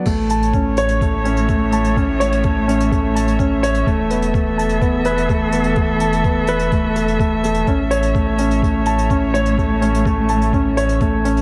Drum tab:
CC |x---------------|----------------|----------------|----------------|
HH |x-xxx-xxx-xxx-xx|x-xxx-xxx-xxx-xx|x-xxx-xxx-xxx-xx|x-xxx-xxx-xxx-xx|
BD |o---o---o---o---|o---o---o---o---|o---o---o---o---|o---o---o---o---|

CC |----------------|----------------|
HH |x-xxx-xxx-xxx-xx|x-xxx-xxx-xxx-xx|
BD |o---o---o---o---|o---o---o---o---|